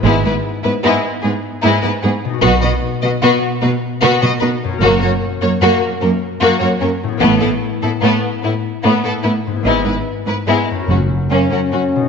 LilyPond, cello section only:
\new Staff \with { instrumentName = "Cello section" } { \clef bass \time 12/8 \key b \major \tempo 4. = 100 gis,8 gis,8 r8 gis,8 gis,8 r8 gis,8 r8 gis,8 gis,8 gis,8 r8 | b,8 b,8 r8 b,8 b,8 r8 b,8 r8 b,8 b,8 b,8 r8 | fis,8 fis,8 r8 fis,8 fis,8 r8 fis,8 r8 fis,8 fis,8 fis,8 r8 | a,8 a,8 r8 a,8 a,8 r8 a,8 r8 a,8 a,8 a,8 r8 |
gis,8 gis,8 r8 gis,8 gis,8 r8 fis,8 r8 fis,8 fis,8 fis,8 r8 | }